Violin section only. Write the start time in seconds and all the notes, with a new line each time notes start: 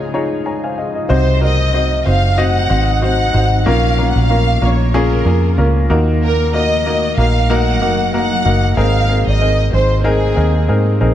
1.12 C5
1.44 D#5
2.08 F5
2.40 F#5
3.04 F#5
3.69 F5
4.09 F#5
4.18 F5
4.65 C#5
4.96 A#4
6.24 A#4
6.55 D#5
7.19 F5
7.51 F#5
8.15 F#5
8.78 F5
9.28 D#5
9.73 C5
10.06 G#4